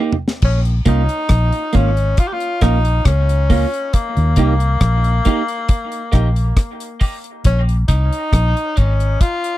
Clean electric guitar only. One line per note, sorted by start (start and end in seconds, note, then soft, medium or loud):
0.00 0.14 A#3 medium
0.00 0.14 D#4 medium
0.00 0.15 G4 medium
0.86 1.01 A#3 medium
0.86 1.02 C#4 medium
0.86 1.02 F4 loud
1.73 1.89 A#3 medium
1.73 1.90 C#4 medium
1.73 1.90 F4 medium
2.62 2.77 A#3 medium
2.62 2.78 C#4 loud
2.62 2.78 F4 loud
3.50 3.65 A#3 medium
3.50 3.66 C#4 medium
3.50 3.66 F4 loud
4.37 4.53 A#3 medium
4.37 4.53 D#4 medium
4.37 4.54 G4 loud
5.25 5.41 A#3 medium
5.25 5.41 D#4 medium
5.25 5.42 G4 loud
6.12 6.28 A#3 medium
6.12 6.28 D#4 loud
6.12 6.29 G4 medium
7.00 7.16 A#3 medium
7.00 7.16 D#4 medium
7.00 7.16 G4 loud
7.89 8.04 A#3 medium
7.89 8.04 C#4 medium
7.89 8.05 F4 loud
8.76 8.92 A#3 medium
8.76 8.92 C#4 loud
8.76 8.93 F4 loud